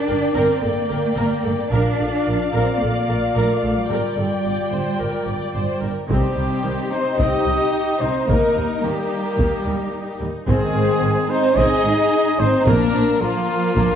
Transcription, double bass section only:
0.08 G1
0.35 G1
0.62 G1
0.90 G1
1.17 G1
1.45 G1
1.71 A#1
1.99 A#1
2.27 A#1
2.54 A#1
2.81 A#1
3.08 A#1
3.35 A#1
3.64 A#1
3.90 G1
4.17 G1
4.45 G1
4.72 G1
5.00 G1
5.27 G1
5.55 G1
5.82 G1
6.10 C2
6.37 C2
6.64 C2
7.18 C2
7.46 C2
8.01 C2
8.29 D#2
8.55 D#2
8.82 D#2
9.37 D#2
9.65 D#2
10.20 D#2
10.48 G#1
10.74 G#1
11.01 G#1
11.56 G#1
11.83 G#1
12.39 G#1
12.66 A#1
12.94 A#1
13.20 A#1
13.76 A#1

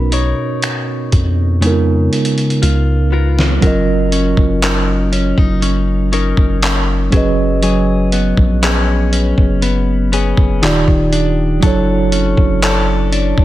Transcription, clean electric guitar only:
Already playing: B3
0.12 D#4 A#4 C#5
1.62 C#3
2.62 F4
3.12 B3 F4 A#4
3.62 F#3 A#4
4.12 C#4
4.62 C#4 D#4 A#4
5.12 C#4
5.38 D#4
5.62 C#4
6.12 C#4 D#4 A#4
6.63 C#4
7.13 F#3
7.63 F#3 G#4
8.12 B3
8.63 B3 C#4 G#4
9.13 C#4
9.62 B3
10.12 B3 C#4 G#4
10.62 D#3
11.12 D4
11.62 F#3 A4
12.12 C#4
12.63 C#4 D4 A4
13.12 D4

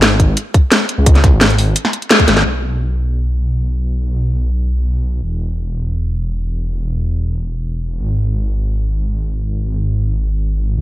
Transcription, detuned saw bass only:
Already playing: G#1
0.98 C#2
1.33 G#1
2.28 G#1
2.45 B1
5.23 E1
8.00 G#1
10.77 C#2

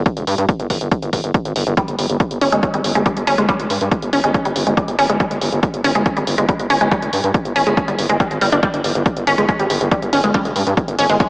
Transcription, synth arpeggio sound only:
1.77 G3
2.41 C#4
2.52 G#3
2.74 G3
2.95 G#3
3.06 G3
3.27 C#4
3.38 G#3
3.49 G3
4.13 C#4
4.24 G#3
4.45 G3
4.67 G#3
4.77 G3
4.99 C#4
5.10 G#3
5.20 G3
5.84 C#4
5.95 G#3
6.17 G3
6.38 G#3
6.49 G3
6.70 C#4
6.81 G#3
6.91 G3
7.56 C#4
7.67 G#3
7.88 G3
8.09 G#3
8.20 G3
8.41 G3
8.52 D4
8.63 G3
9.27 C#4
9.38 G#3
9.49 G#3
9.59 G3
9.91 G3
10.13 C#4
10.24 G#3
10.34 G3
10.99 C#4
11.09 G#3
11.20 G#3

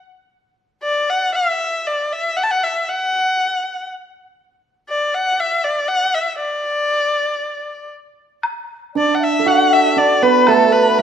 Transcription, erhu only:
0.83 D5
1.10 F#5
1.35 E5
1.87 D5
2.12 E5
2.37 F#5
2.43 A5
2.51 F#5
2.63 E5
2.89 F#5
4.89 D5
5.14 F#5
5.40 E5
5.64 D5
5.88 F#5
6.14 E5
6.41 D5
8.98 D5
9.15 F#5
9.24 E5
9.48 F#5
9.73 E5
9.98 D5
10.23 B4
10.48 A4
10.72 B4
10.99 A4

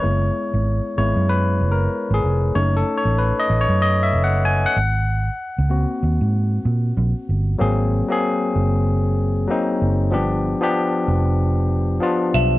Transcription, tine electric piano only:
Already playing: C#5
0.02 G#3 B3 E4
0.98 G#3 B3 E4 C#5
1.29 B4
1.72 A#4
2.14 G#4
2.55 A3 C#4 D#4 C#5
2.77 A4
2.97 C#5
3.18 B4
3.39 D#5
3.61 C#5
3.82 D#5
4.03 E5
4.24 F#5
4.45 G#5
4.66 F#5
5.69 A#3 C4 F#4
7.58 F#3 A#3 C4 G#4
8.09 F#3 A#3 C4 G#4
9.48 F#3 A#3 C4 D#4
10.11 F3 B3 D4 G4
10.61 F3 B3 D4 G4
12.00 F3 B3 D4 F4

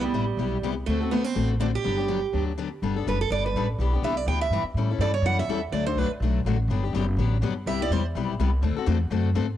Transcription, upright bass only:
0.13 A1
0.37 B1
0.62 C2
0.87 D2
1.35 A1
1.86 G1
2.33 D2
2.82 G1
3.07 F#1
3.30 G1
3.54 A1
3.78 B1
4.02 C2
4.26 D2
4.50 G2
4.63 muted upright bass stroke
4.74 A2
4.99 G2
5.22 F#2
5.48 E2
5.72 D2
5.95 C2
6.10 muted upright bass stroke
6.20 B1
6.45 A1
6.68 G1
6.93 F#1
7.17 A1
7.41 G1
7.66 C2
7.90 E2
8.15 B1
8.39 C2
8.62 D2
8.76 muted upright bass stroke
8.87 E2
9.10 F#2
9.35 G#2

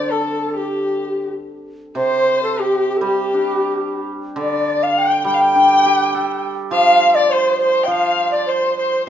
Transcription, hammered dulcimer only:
Already playing: D3
1.95 C3
3.01 G3
3.34 D4
4.36 D3
5.24 G3
5.55 D4
5.86 G4
6.15 A4
6.71 F3
7.87 F3

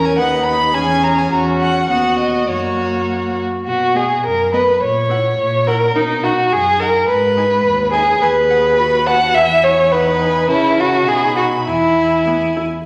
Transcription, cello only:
Already playing: E2
0.17 D#2
0.74 E2
1.32 E2
1.90 D#2
2.48 F#2
3.66 B2
4.23 F#2
4.81 A#2
5.38 A#2
5.95 B2
6.52 F#2
7.08 G#2
7.65 D#2
8.22 D#2
9.35 E2
10.49 C#3
11.07 B2
11.66 E2

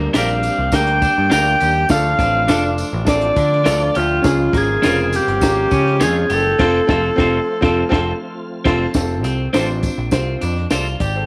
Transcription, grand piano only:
Already playing: G2
0.13 D4 G4 A#4
0.72 D4 G4 A#4
1.31 D4 G4 A#4
1.89 D3 D4 F4 A4
2.47 D4 F4 A4
3.05 D4 F4 A4
3.63 D4 F4 A4
4.22 C#3 C#4 F4 G#4
4.82 C#3 F4 A#4
5.40 C#4 F4 G4
6.00 C#4 F4 G#4
6.58 C4 F4 A4
6.87 C4 F4 A4
7.16 C4 F4
7.61 C4 F4 A4
7.89 C4 F4 A4
8.65 C4 F4 A4
8.94 C4 F4 A4
9.53 C4 F4 C5
10.11 C4 F4 C5
10.72 D5 F5
11.00 D5
11.16 A4 C5

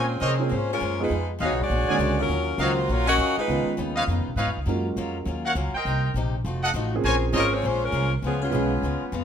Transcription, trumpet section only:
0.20 A#4 C5 C#5 D#5
1.40 G#4 B4 D#5 F5
1.89 G#4 A#4 D5 G#5
2.59 F#4 C#5 D#5 F5
3.07 F#4 C#5 D#5 G#5
3.95 B4 C#5 D#5 F5
4.37 B4 C#5 D#5 F5
5.45 A#4 C#5 F5 F#5
5.74 A#4 C5 D#5 G5
6.62 A4 D#5 F5 F#5
7.03 A#4 C5 C#5 G#5
7.33 A#4 C5 C#5 D#5

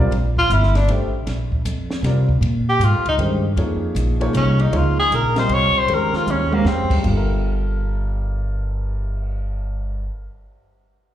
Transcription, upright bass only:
Already playing: B1
0.11 A#1
0.50 G1
0.88 A1
1.27 A#1
1.65 F2
2.02 C3
2.41 A#2
2.79 G#2
2.92 F2
3.05 C#2
3.18 G2
3.56 F2
3.95 A#1
4.33 C2
4.72 C#2
5.11 A#1
5.49 C2
5.75 muted upright bass stroke
5.88 F2
6.13 muted upright bass stroke
6.26 D#2
6.64 F2
7.04 G1

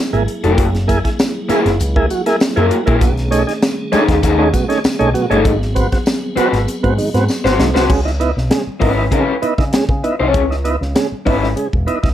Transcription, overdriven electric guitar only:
0.44 A#3 E4 A#4
1.49 A#3 E4 G#4
2.57 A#3 E4 A#4
2.87 A#3 E4 A#4
3.92 A3 D#4 G#4
4.23 A3 D#4 G#4
5.31 A3 D#4 A4
6.36 C4 F#4 B4
7.44 C4 F#4 C5
7.74 C4 F#4 C5
8.80 C#4 E4 B4
9.11 C#4 E4 B4
10.20 C#4 E4 C#5
11.26 C#4 E4 B4

